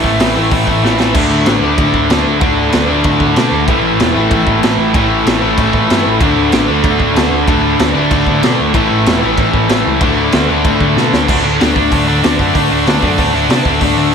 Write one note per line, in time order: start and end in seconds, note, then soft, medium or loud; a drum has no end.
0.00 1.13 A2 medium
0.00 1.14 E3 loud
0.00 0.19 E3 medium
0.00 1.13 A3 medium
0.00 0.19 A3 medium
0.00 kick medium
0.04 0.20 A1 medium
0.04 0.18 A2 medium
0.19 0.36 A1 loud
0.19 0.36 A2 medium
0.19 0.35 E3 medium
0.19 0.34 A3 loud
0.19 snare loud
0.19 open hi-hat medium
0.36 0.52 A1 medium
0.36 0.50 A2 medium
0.36 0.51 E3 medium
0.36 0.51 A3 loud
0.52 0.66 A1 medium
0.52 0.67 A2 medium
0.52 0.66 E3 loud
0.52 0.65 A3 loud
0.52 kick loud
0.52 open hi-hat medium
0.67 0.83 A1 medium
0.67 0.82 A2 medium
0.67 0.83 E3 medium
0.67 0.83 A3 loud
0.67 kick medium
0.83 1.14 A1 medium
0.83 0.99 A2 loud
0.83 0.98 E3 medium
0.83 0.98 A3 loud
0.83 snare medium
0.99 1.15 A2 medium
0.99 1.14 E3 medium
0.99 1.14 A3 loud
0.99 snare medium
1.15 1.28 D2 medium
1.15 1.65 D3 medium
1.15 1.63 A3 loud
1.15 1.61 D4 medium
1.15 kick loud
1.15 crash loud
1.15 crash medium
1.31 1.44 D2 medium
1.46 1.59 A1 medium
1.46 snare loud
1.46 crash medium
1.62 1.75 D2 medium
1.62 2.39 D3 medium
1.62 2.41 A3 medium
1.62 2.40 D4 medium
1.78 1.91 D2 loud
1.78 kick loud
1.78 crash medium
1.94 2.07 D2 medium
1.94 kick medium
2.09 2.23 D2 medium
2.09 2.39 D3 medium
2.09 2.41 A3 medium
2.09 2.41 D4 medium
2.09 snare loud
2.09 crash medium
2.26 2.39 D2 medium
2.40 2.67 D2 loud
2.40 2.87 D3 loud
2.40 2.88 A3 loud
2.40 2.86 D4 loud
2.40 kick loud
2.40 crash medium
2.72 2.87 D2 loud
2.72 snare loud
2.72 crash medium
2.87 3.02 D2 medium
2.87 3.67 D3 medium
2.87 3.69 A3 medium
2.87 3.66 D4 medium
3.04 3.17 D2 loud
3.04 kick loud
3.04 crash medium
3.20 3.33 D2 medium
3.20 kick medium
3.35 3.49 B2 medium
3.35 3.66 D3 medium
3.35 3.67 A3 medium
3.35 3.68 D4 medium
3.35 snare loud
3.35 crash medium
3.51 3.64 D2 loud
3.68 3.81 A1 loud
3.68 4.17 A2 medium
3.68 4.16 E3 medium
3.68 4.14 A3 loud
3.68 kick loud
3.68 crash medium
3.83 3.96 A1 loud
3.99 4.12 E1 medium
3.99 snare loud
3.99 crash medium
4.14 4.28 A1 medium
4.14 4.92 A2 medium
4.14 4.94 E3 medium
4.14 4.96 A3 medium
4.31 4.44 A1 loud
4.31 kick loud
4.31 crash medium
4.47 4.60 A1 medium
4.47 kick medium
4.60 4.75 A1 loud
4.60 4.91 A2 medium
4.60 4.93 E3 medium
4.60 4.95 A3 loud
4.60 snare loud
4.60 crash medium
4.78 4.91 A1 loud
4.93 5.20 A1 medium
4.93 5.40 A2 loud
4.93 5.41 E3 loud
4.93 5.40 A3 loud
4.93 kick loud
4.93 crash medium
5.26 5.39 A1 medium
5.26 snare loud
5.26 crash medium
5.41 5.55 A1 loud
5.41 6.20 A2 medium
5.41 6.20 E3 medium
5.41 6.22 A3 medium
5.58 5.71 A1 medium
5.58 kick loud
5.58 crash medium
5.73 5.86 A1 medium
5.73 kick medium
5.87 6.03 G2 medium
5.87 6.19 A2 medium
5.87 6.20 E3 medium
5.87 6.21 A3 medium
5.87 snare loud
5.87 crash medium
6.06 6.19 A1 medium
6.20 6.34 D2 loud
6.20 6.70 D3 medium
6.20 6.69 A3 loud
6.20 6.67 D4 loud
6.20 kick loud
6.20 crash medium
6.37 6.50 D2 medium
6.52 6.66 A1 medium
6.52 snare loud
6.52 crash medium
6.68 6.81 D2 medium
6.68 7.46 D3 medium
6.68 7.48 A3 medium
6.68 7.46 D4 medium
6.84 6.97 D2 loud
6.84 kick loud
6.84 crash medium
7.00 7.13 D2 medium
7.00 kick medium
7.14 7.28 D2 medium
7.14 7.43 D3 medium
7.14 7.46 A3 medium
7.14 7.47 D4 medium
7.14 snare loud
7.14 crash medium
7.31 7.44 D2 medium
7.47 7.73 D2 loud
7.47 7.94 D3 loud
7.47 7.95 A3 loud
7.47 7.93 D4 loud
7.47 kick loud
7.47 crash medium
7.79 7.92 D2 medium
7.79 snare loud
7.79 crash medium
7.94 8.08 D2 loud
7.94 8.73 D3 medium
7.94 8.75 A3 medium
7.94 8.73 D4 medium
8.11 8.24 D2 loud
8.11 kick loud
8.11 crash medium
8.26 8.40 D2 loud
8.26 kick medium
8.41 8.56 B2 medium
8.41 8.72 D3 medium
8.41 8.73 A3 medium
8.41 8.73 D4 medium
8.41 snare loud
8.41 crash medium
8.60 8.72 D2 medium
8.74 8.87 A1 loud
8.74 9.21 A2 loud
8.74 9.21 E3 loud
8.74 9.21 A3 loud
8.74 kick loud
8.74 crash medium
8.91 9.04 A1 medium
9.06 9.20 E1 loud
9.06 snare loud
9.06 crash medium
9.22 9.35 A1 loud
9.22 10.00 A2 medium
9.22 10.01 E3 medium
9.22 10.02 A3 medium
9.38 9.51 A1 loud
9.38 kick loud
9.38 crash medium
9.54 9.67 A1 loud
9.54 kick medium
9.68 9.83 A1 medium
9.68 9.99 A2 medium
9.68 10.00 E3 medium
9.68 10.02 A3 medium
9.68 snare loud
9.68 crash medium
9.86 9.98 C#2 medium
10.00 10.27 D2 medium
10.00 10.47 D3 loud
10.00 10.48 A3 loud
10.00 10.47 D4 loud
10.00 kick loud
10.00 crash medium
10.32 10.46 D2 medium
10.32 snare loud
10.32 crash medium
10.48 10.62 D2 loud
10.48 11.27 D3 medium
10.48 11.27 A3 medium
10.48 11.27 D4 medium
10.65 10.78 D2 medium
10.65 kick loud
10.65 crash medium
10.80 10.93 D2 loud
10.80 kick medium
10.96 11.09 B2 medium
10.96 11.27 D3 medium
10.96 11.28 A3 medium
10.96 11.28 D4 medium
10.96 snare medium
11.13 11.26 D2 medium
11.13 snare medium
11.28 11.40 D2 medium
11.28 11.45 D3 loud
11.28 11.44 A3 loud
11.28 11.43 D4 loud
11.28 kick loud
11.28 crash loud
11.44 11.56 D2 medium
11.44 11.59 D3 medium
11.44 11.60 A3 medium
11.44 11.60 D4 loud
11.59 11.72 D2 medium
11.59 11.77 D3 medium
11.59 11.76 A3 medium
11.59 11.75 D4 medium
11.59 snare loud
11.59 open hi-hat medium
11.76 11.88 D2 medium
11.76 11.91 D3 medium
11.76 11.92 A3 medium
11.76 11.92 D4 loud
11.76 kick medium
11.91 12.03 D2 loud
11.91 12.08 D3 medium
11.91 12.08 A3 loud
11.91 12.07 D4 loud
11.91 kick loud
11.91 open hi-hat medium
12.08 12.19 D2 medium
12.08 12.22 D3 medium
12.08 12.23 A3 loud
12.08 12.23 D4 loud
12.22 12.35 D2 medium
12.22 12.40 D3 medium
12.22 12.39 A3 medium
12.22 12.39 D4 loud
12.22 snare loud
12.22 open hi-hat medium
12.39 12.51 F#2 medium
12.39 12.54 D3 medium
12.39 12.55 A3 medium
12.39 12.56 D4 loud
12.39 kick medium
12.55 12.66 D2 medium
12.55 12.71 D3 medium
12.55 12.71 A3 loud
12.55 12.71 D4 loud
12.55 kick loud
12.55 open hi-hat medium
12.71 12.83 D2 medium
12.71 12.86 D3 medium
12.71 12.87 A3 medium
12.71 12.87 D4 medium
12.86 12.98 D2 medium
12.86 13.03 D3 loud
12.86 13.03 A3 loud
12.86 13.02 D4 loud
12.86 snare loud
12.86 open hi-hat medium
13.02 13.14 F#2 loud
13.02 13.18 D3 medium
13.02 13.18 A3 medium
13.02 13.19 D4 loud
13.02 kick medium
13.18 13.30 D2 loud
13.18 13.35 D3 loud
13.18 13.34 A3 loud
13.18 13.34 D4 loud
13.18 kick loud
13.18 open hi-hat medium
13.33 13.45 D2 medium
13.33 13.49 D3 medium
13.33 13.50 A3 medium
13.33 13.50 D4 loud
13.49 13.61 C3 medium
13.49 13.67 D3 medium
13.49 13.66 A3 medium
13.49 13.65 D4 medium
13.49 snare loud
13.49 open hi-hat medium
13.65 13.77 D2 medium
13.65 13.81 D3 medium
13.65 13.82 A3 medium
13.65 13.82 D4 loud
13.65 kick medium
13.81 13.93 D2 loud
13.81 13.98 D3 loud
13.81 13.98 A3 loud
13.81 13.97 D4 loud
13.81 kick loud
13.81 open hi-hat medium
13.97 14.09 D2 medium
13.97 14.13 D3 medium
13.97 14.14 A3 medium
13.97 14.14 D4 loud